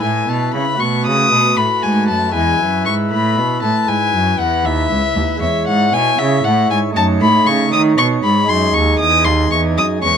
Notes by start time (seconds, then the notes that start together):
Already playing: E4 B4
0.01 A2 G#5
0.27 B2 A5
0.53 C#3 B5
0.74 A3 F#4 B4
0.79 B2 C#6
1.05 C#3 D#6
1.31 B2
1.57 A2 B5
1.82 G#2 G#5
2.08 F#2 A5
2.30 G#3 E4 B4
2.34 E2 G#5
2.59 F#2
2.85 G#2 C#6
3.11 A2 B5
3.36 B2
3.62 A2 A5
3.87 G#2 G#5
4.12 F#2
4.39 E2 F#5
4.65 D#2 E5
4.90 C#2
5.15 D#2
5.37 G#3 E4 C#5
5.41 E2 E5
5.67 G#2 F#5
5.93 B2 G#5
6.18 C#3 E5
6.44 A2 F#5
6.69 G#2 G#5
6.90 A3 D#4 C#5
6.95 F#2 A5
7.21 A2 B5
7.46 C#3 C#6
7.72 D#3 D#6
7.98 B2 C#6
8.24 G#2 B5
8.45 G#3 D#4 G#4
8.49 F#2 C6
8.74 D#2 C#6
8.99 E2 D#6
9.25 D#2 C6
9.51 E2 C#6
9.77 F#2 D#6
9.98 G#3 C#4 G#4
10.02 E2 C#6